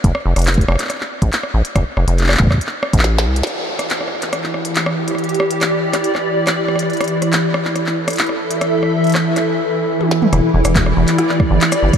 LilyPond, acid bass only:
\new Staff \with { instrumentName = "Acid bass" } { \clef bass \time 4/4 \key e \phrygian \tempo 4 = 140 f,,16 r16 f,,16 f,,8. f,,16 r4 a,,16 r8 a,,16 r16 | f,,16 r16 f,,16 f,,8. f,,16 r4 a,,8. c,8 | r1 | r1 |
r1 | r1 | e,,16 r16 e,,16 e,,8. e,,16 r4 g,,16 r8 g,,16 r16 | }